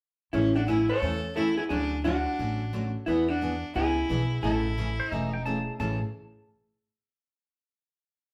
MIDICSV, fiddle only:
0, 0, Header, 1, 2, 480
1, 0, Start_track
1, 0, Key_signature, 3, "major"
1, 0, Tempo, 341297
1, 482, Time_signature, 4, 2, 24, 8
1, 11720, End_track
2, 0, Start_track
2, 0, Title_t, "Fiddle"
2, 0, Program_c, 0, 110
2, 473, Note_on_c, 0, 61, 72
2, 781, Note_on_c, 0, 62, 71
2, 802, Note_off_c, 0, 61, 0
2, 956, Note_on_c, 0, 64, 67
2, 977, Note_off_c, 0, 62, 0
2, 1255, Note_off_c, 0, 64, 0
2, 1264, Note_on_c, 0, 69, 88
2, 1876, Note_off_c, 0, 69, 0
2, 1918, Note_on_c, 0, 64, 74
2, 2204, Note_off_c, 0, 64, 0
2, 2226, Note_on_c, 0, 64, 68
2, 2306, Note_off_c, 0, 64, 0
2, 2395, Note_on_c, 0, 62, 79
2, 2846, Note_off_c, 0, 62, 0
2, 2869, Note_on_c, 0, 62, 75
2, 4084, Note_off_c, 0, 62, 0
2, 4321, Note_on_c, 0, 59, 74
2, 4630, Note_on_c, 0, 62, 74
2, 4652, Note_off_c, 0, 59, 0
2, 5273, Note_off_c, 0, 62, 0
2, 5281, Note_on_c, 0, 64, 78
2, 6184, Note_off_c, 0, 64, 0
2, 6245, Note_on_c, 0, 64, 76
2, 7173, Note_off_c, 0, 64, 0
2, 7173, Note_on_c, 0, 63, 76
2, 7625, Note_off_c, 0, 63, 0
2, 11720, End_track
0, 0, End_of_file